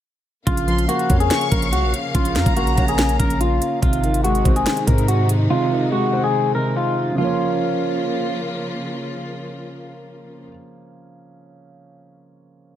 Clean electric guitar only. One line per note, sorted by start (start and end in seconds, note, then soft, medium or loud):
0.47 0.86 F4 loud
0.89 1.18 F#4 medium
1.20 1.50 G#4 medium
1.52 1.71 A#4 medium
1.72 1.92 F#4 medium
2.15 2.54 F4 loud
2.57 2.86 F#4 medium
2.89 3.18 G#4 medium
3.19 3.39 A#4 medium
3.41 3.80 F4 medium
3.82 4.22 F4 loud
4.24 4.54 F#4 medium
4.56 4.86 G#4 medium
4.87 5.07 A#4 medium
5.08 5.28 F#4 medium
5.50 5.90 F4 loud
5.92 6.22 F#4 medium
6.24 6.53 G#4 medium
6.55 6.74 A#4 medium
6.77 7.16 F4 medium
7.18 8.40 F4 medium